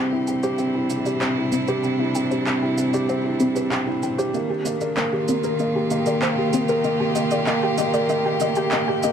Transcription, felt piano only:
0.00 0.28 C4 medium
0.00 0.12 E4 medium
0.00 0.43 G4 medium
0.12 0.27 E4 medium
0.28 0.43 C4 medium
0.43 0.53 G4 medium
0.59 0.68 C4 medium
0.75 0.90 E4 medium
0.91 1.06 C4 medium
1.06 1.21 G4 medium
1.22 1.37 C4 medium
1.37 1.53 E4 medium
1.53 1.68 C4 medium
1.69 1.78 G4 medium
1.85 2.00 C4 medium
2.00 2.15 E4 medium
2.16 2.31 C4 medium
2.32 2.47 G4 medium
2.47 2.62 C4 medium
2.63 2.78 E4 medium
2.78 2.93 C4 medium
2.94 3.03 G4 medium
3.09 3.18 C4 medium
3.24 3.40 E4 medium
3.40 3.55 C4 medium
3.55 3.71 G4 medium
3.71 3.87 C4 medium
3.87 4.02 E4 medium
4.03 4.18 C4 medium
4.18 4.28 G4 loud
4.34 4.49 A#3 medium
4.50 4.65 G4 medium
4.65 4.80 A#3 medium
4.81 4.96 A#4 medium
4.97 5.12 A#3 medium
5.12 5.28 G4 medium
5.29 5.43 A#3 medium
5.44 5.53 A#4 medium
5.60 5.75 A#3 medium
5.75 5.90 G4 medium
5.91 6.06 A#3 medium
6.06 6.21 A#4 medium
6.22 6.37 A#3 medium
6.38 6.53 G4 medium
6.53 6.68 A#3 medium
6.69 6.78 A#4 medium
6.84 6.99 A#3 medium
7.00 7.15 G4 medium
7.16 7.31 A#3 medium
7.31 7.45 A#4 medium
7.47 7.62 A#3 medium
7.63 7.78 G4 medium
7.78 7.93 A#3 medium
7.94 8.07 A#4 medium
8.09 8.24 A#3 medium
8.25 8.38 G4 medium
8.41 8.56 A#3 medium
8.57 8.70 G4 medium
8.73 8.88 A#3 medium
8.89 9.01 G4 medium
9.04 9.12 A#3 medium

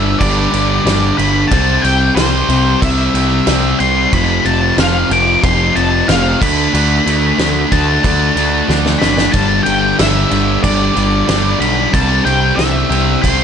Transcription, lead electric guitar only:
0.00 0.22 E5 medium
0.19 1.21 D5 medium
1.18 1.47 B5 loud
1.48 1.83 A5 loud
1.82 2.17 G5 medium
2.15 2.82 C5 medium
2.82 3.83 E5 medium
3.80 4.13 C6 loud
4.14 4.44 B5 loud
4.46 4.76 A5 medium
4.80 5.13 F5 medium
5.13 5.42 D6 loud
5.44 5.77 C6 loud
5.76 6.09 A5 medium
6.08 6.42 F5 loud
6.42 7.75 B5 loud
7.72 9.06 A5 loud
8.99 9.33 B5 medium
9.32 9.63 A5 loud
9.63 9.95 G5 medium
9.99 10.62 E5 medium
10.63 11.63 D5 medium
11.60 11.94 B5 medium
11.93 12.23 A5 loud
12.25 12.59 G5 medium
12.56 13.24 E5 medium
13.22 13.44 C6 medium

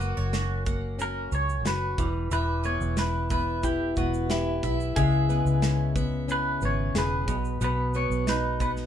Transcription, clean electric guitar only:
0.00 0.63 F#4 medium
1.02 1.34 A#4 loud
1.35 1.67 C#5 medium
1.67 2.32 B4 loud
2.33 2.65 B4 medium
2.66 2.98 C#5 medium
2.99 3.29 B4 medium
3.31 3.65 B4 medium
3.64 3.97 G4 medium
3.98 4.31 F#4 medium
4.31 4.76 E4 medium
4.96 5.91 G#4 medium
6.32 6.64 B4 loud
6.65 6.94 C#5 loud
6.98 7.63 B4 loud
7.64 7.94 B4 loud
7.96 8.26 C#5 medium
8.29 8.61 B4 medium
8.62 8.70 B4 medium

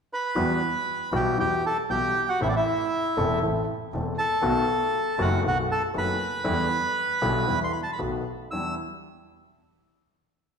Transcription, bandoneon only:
0.13 1.10 B4 medium
0.13 1.18 B5 medium
1.16 1.38 G4 medium
1.16 1.38 G5 medium
1.40 1.63 G4 medium
1.40 1.65 G5 medium
1.66 1.77 A4 medium
1.66 1.77 A5 medium
1.90 2.26 G4 medium
1.90 2.29 G5 medium
2.29 2.40 F#4 medium
2.29 2.40 F#5 medium
2.42 2.48 E4 medium
2.42 2.48 E5 medium
2.49 2.55 D5 medium
2.56 3.39 E4 medium
2.56 3.39 E5 medium
4.18 5.15 A4 medium
4.18 5.22 A5 medium
5.21 5.43 F#4 medium
5.21 5.43 F#5 medium
5.47 5.58 F#4 medium
5.47 5.58 F#5 medium
5.72 5.82 A4 medium
5.72 5.82 A5 medium
5.98 7.60 B4 medium
5.98 7.59 B5 medium
7.64 7.72 C6 medium
7.73 7.81 B5 medium
7.83 7.91 A5 medium
7.93 8.01 B5 medium
8.51 8.75 E6 medium

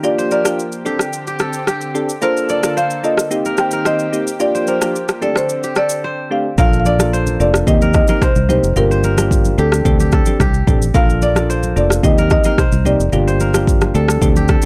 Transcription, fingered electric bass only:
6.58 7.36 A#1 loud
7.40 7.62 F1 medium
7.67 8.01 D#2 loud
8.36 8.58 C2 medium
8.63 8.74 F1 medium
8.76 9.54 G1 loud
9.58 9.81 D2 loud
9.85 10.19 D2 loud
10.40 10.62 C2 medium
10.67 10.90 A1 medium
10.94 11.72 A#1 loud
11.76 11.99 F1 medium
12.03 12.38 D#2 loud
12.72 12.95 C2 medium
13.00 13.10 F1 medium
13.13 13.90 G1 loud
13.95 14.17 D2 loud
14.22 14.56 D2 medium

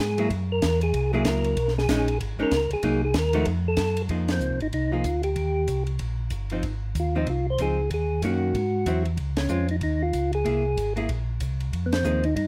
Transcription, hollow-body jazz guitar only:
0.18 0.29 F#3 medium
0.18 0.30 A#3 medium
0.18 0.30 E4 medium
0.18 0.30 G#4 medium
1.13 1.54 F#3 medium
1.13 1.55 A#3 medium
1.13 1.55 E4 medium
1.13 1.55 G#4 medium
1.89 2.06 G#3 medium
1.89 2.06 C#4 medium
1.89 2.07 D#4 medium
2.39 2.50 G#3 medium
2.39 2.51 C#4 medium
2.39 2.51 D#4 medium
2.83 3.00 F#3 medium
2.83 3.01 A#3 medium
2.83 3.01 D#4 medium
3.33 3.45 F3 medium
3.33 3.45 A3 medium
3.33 3.45 D#4 medium
3.33 3.46 F#4 medium
4.09 4.57 F3 soft
4.09 4.57 A#3 soft
4.09 4.57 D#4 soft
4.09 4.57 G#4 soft
4.92 5.03 F3 soft
4.92 5.04 A#3 medium
4.92 5.04 D#4 medium
4.92 5.04 G#4 medium
6.52 6.63 F3 medium
6.52 6.63 C4 medium
6.52 6.63 D#4 medium
7.15 7.26 F3 medium
7.15 7.27 C4 medium
7.15 7.27 D#4 medium
7.59 7.77 F3 medium
7.59 7.77 C4 soft
7.59 7.77 D#4 soft
8.23 8.55 D#3 medium
8.23 8.55 A#3 medium
8.23 8.55 C#4 medium
8.23 8.55 F#4 medium
8.86 9.04 F#3 medium
8.86 9.04 C4 medium
8.86 9.04 E4 medium
9.49 9.67 G#3 soft
9.49 9.67 C4 medium
9.49 9.67 F4 medium
10.45 10.62 A#3 soft
10.45 10.63 E4 soft
10.45 10.63 G#4 medium
10.96 11.07 A#3 medium
10.96 11.08 E4 medium
10.96 11.08 G#4 medium
12.04 12.22 F3 medium
12.04 12.22 A#3 medium
12.04 12.22 D#4 medium
12.04 12.22 G#4 medium

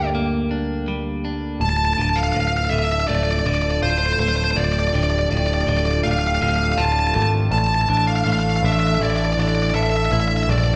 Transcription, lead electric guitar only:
1.61 1.69 A5 medium
1.69 1.76 A5 medium
1.77 1.85 A5 medium
1.85 1.93 A5 medium
1.93 2.01 A5 medium
2.02 2.09 A5 medium
2.09 2.18 A5 medium
2.16 2.23 F5 medium
2.23 2.32 F5 medium
2.32 2.40 F5 medium
2.41 2.47 F5 medium
2.48 2.56 F5 medium
2.57 2.64 F5 medium
2.65 2.70 F5 medium
2.70 2.78 E5 medium
2.79 2.84 E5 medium
2.85 2.92 E5 medium
2.92 3.00 E5 medium
3.00 3.07 E5 medium
3.08 3.15 D5 medium
3.15 3.23 D5 medium
3.23 3.31 D5 medium
3.31 3.39 D5 medium
3.39 3.46 D5 medium
3.47 3.54 D5 medium
3.55 3.62 D5 medium
3.62 3.70 D5 medium
3.71 3.79 D5 medium
3.83 3.90 C5 medium
3.90 3.98 C5 medium
3.98 4.05 C5 medium
4.06 4.12 C5 medium
4.13 4.19 C5 medium
4.19 4.27 C5 medium
4.28 4.36 C5 medium
4.36 4.44 C5 medium
4.44 4.51 C5 medium
4.51 4.59 C5 soft
4.56 4.64 D5 medium
4.65 4.72 D5 medium
4.72 4.79 D5 medium
4.79 4.87 D5 medium
4.88 4.95 D5 medium
4.96 5.03 D5 medium
5.03 5.10 D5 medium
5.10 5.18 D5 medium
5.19 5.27 D5 medium
5.31 5.37 D5 medium
5.37 5.45 D5 soft
5.47 5.53 D5 medium
5.54 5.61 D5 medium
5.61 5.69 D5 medium
5.69 5.77 D5 medium
5.77 5.85 D5 medium
5.86 5.91 D5 soft
5.91 5.99 D5 medium
6.03 6.11 F5 medium
6.11 6.19 F5 medium
6.19 6.27 F5 medium
6.27 6.35 F5 medium
6.35 6.42 F5 medium
6.43 6.49 F5 medium
6.49 6.56 F5 medium
6.56 6.64 F5 medium
6.64 6.72 F5 medium
6.72 6.80 F5 medium
6.77 6.84 A5 medium
6.85 6.92 A5 medium
6.92 6.99 A5 medium
6.99 7.07 A5 medium
7.07 7.14 A5 medium
7.14 7.22 A5 medium
7.22 7.30 A5 medium
7.52 7.58 A5 medium
7.58 7.66 A5 medium
7.67 7.74 A5 medium
7.75 7.81 A5 medium
7.81 7.89 A5 medium
7.89 7.96 A5 medium
7.97 8.05 A5 medium
8.07 8.16 F5 medium
8.16 8.24 F5 medium
8.24 8.32 F5 medium
8.33 8.39 F5 medium
8.40 8.48 F5 medium
8.50 8.56 F5 medium
8.56 8.65 F5 medium
8.66 8.72 E5 medium
8.73 8.79 E5 medium
8.80 8.87 E5 medium
8.87 8.95 E5 medium
8.95 9.03 E5 medium
9.03 9.10 D5 medium
9.10 9.16 D5 medium
9.17 9.24 D5 medium
9.25 9.33 D5 medium
9.33 9.40 D5 medium
9.40 9.47 D5 medium
9.48 9.55 D5 medium
9.55 9.62 D5 medium
9.63 9.70 D5 medium
9.70 9.74 D5 medium
9.75 9.82 E5 medium
9.83 9.90 E5 medium
9.90 9.96 E5 medium
9.97 10.04 E5 medium
10.05 10.11 E5 medium
10.12 10.19 E5 medium
10.20 10.28 E5 medium
10.28 10.36 E5 soft
10.37 10.43 E5 medium
10.43 10.50 E5 soft
10.51 10.58 D5 medium
10.58 10.64 D5 medium
10.64 10.72 D5 medium

